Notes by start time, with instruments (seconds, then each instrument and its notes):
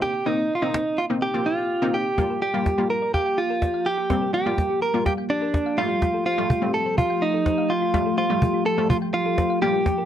Already playing: synth pluck A#3 C4 D#4
0.02 clean electric guitar G4, cajon slap
0.26 synth pluck A#3 C4 D#4, clean electric guitar D#4
0.55 clean electric guitar F4
0.62 synth pluck A#3 C4 D#4, clean electric guitar D#4
0.74 cajon slap
0.98 clean electric guitar F4
1.10 synth pluck A#3 C4 D#4
1.22 clean electric guitar G4
1.34 synth pluck A#3 C4 F4
1.46 clean electric guitar F4
1.82 synth pluck A#3 C4 D#4
1.94 clean electric guitar G4
2.18 ambient pad F3 A#3 G4, synth pluck G3 A#3 F4, synth arpeggio sound G4, cajon bass, cajon slap
2.30 synth arpeggio sound A#4
2.42 clean electric guitar G4, synth arpeggio sound D5
2.54 synth pluck G3 A#3 F4, synth arpeggio sound F5
2.66 synth arpeggio sound G5, cajon bass, cajon slap
2.78 synth pluck G3 A#3 F4, synth arpeggio sound G4
2.90 clean electric guitar A#4, synth arpeggio sound A#4
3.02 synth arpeggio sound D5
3.14 clean electric guitar G4, synth arpeggio sound F5, cajon bass, cajon slap
3.26 synth arpeggio sound G5
3.38 clean electric guitar F4, synth arpeggio sound G4
3.50 synth arpeggio sound A#4
3.62 synth arpeggio sound D5, cajon bass, cajon slap
3.74 synth arpeggio sound F5
3.86 clean electric guitar G4, synth arpeggio sound G5
3.98 synth arpeggio sound G4
4.10 synth pluck G3 A#3 C4, synth arpeggio sound G4, cajon bass, cajon slap
4.22 synth arpeggio sound A#4
4.34 clean electric guitar G4, synth arpeggio sound D5
4.46 synth pluck G3 A#3 F4, synth arpeggio sound F5
4.58 synth arpeggio sound G5, cajon bass, cajon slap
4.70 synth arpeggio sound G4
4.82 synth arpeggio sound A#4, clean electric guitar A#4
4.94 synth pluck G3 A#3 F4, synth arpeggio sound D5
5.06 clean electric guitar G4, synth arpeggio sound F5, cajon bass, cajon slap
5.18 synth arpeggio sound G5
5.30 clean electric guitar D4, synth arpeggio sound G4
5.42 synth arpeggio sound A#4
5.54 synth arpeggio sound D5, cajon bass, cajon slap
5.66 synth arpeggio sound F5
5.78 synth pluck G3 A3 F4, ambient pad A3, clean electric guitar F4, synth arpeggio sound G5
5.90 synth arpeggio sound F4
6.02 synth arpeggio sound F4, cajon bass, cajon slap
6.14 synth arpeggio sound A4
6.26 clean electric guitar F4, synth arpeggio sound C5
6.38 synth pluck G3 A3 F4, synth arpeggio sound F5, cajon slap
6.50 synth arpeggio sound G5, cajon bass, cajon slap
6.62 synth pluck G3 A3 C4, synth arpeggio sound F4
6.74 synth arpeggio sound A4, clean electric guitar A4
6.86 synth arpeggio sound C5, cajon slap
6.98 clean electric guitar F4, synth arpeggio sound F5, cajon bass, cajon slap
7.10 synth arpeggio sound G5
7.22 clean electric guitar D#4, synth arpeggio sound F4
7.34 synth arpeggio sound A4, cajon slap
7.46 synth arpeggio sound C5, cajon bass, cajon slap
7.58 synth arpeggio sound F5
7.70 clean electric guitar F4, synth arpeggio sound G5
7.82 synth arpeggio sound F4, cajon slap
7.94 synth pluck G3 A3 F4, synth arpeggio sound F4, cajon bass, cajon slap
8.06 synth arpeggio sound A4, cajon slap
8.18 clean electric guitar F4, synth arpeggio sound C5
8.30 synth pluck G3 A3 F4, synth arpeggio sound F5, cajon slap
8.42 synth arpeggio sound G5, cajon bass, cajon slap
8.54 synth arpeggio sound F4
8.66 synth arpeggio sound A4, clean electric guitar A4
8.78 synth pluck G3 A3 F4, synth arpeggio sound C5, cajon slap
8.90 clean electric guitar F4, synth arpeggio sound F5, cajon bass, cajon slap
9.02 synth arpeggio sound G5
9.14 clean electric guitar F4, synth arpeggio sound F4
9.26 synth arpeggio sound A4, cajon slap
9.38 synth arpeggio sound C5, cajon bass, cajon slap
9.50 synth arpeggio sound F5
9.62 synth pluck G3 A#3 F4, ambient pad A#3, clean electric guitar G4, synth arpeggio sound G5
9.74 synth arpeggio sound G4, cajon slap
9.86 synth arpeggio sound G4, cajon bass, cajon slap, riser
9.98 synth arpeggio sound A#4, cajon slap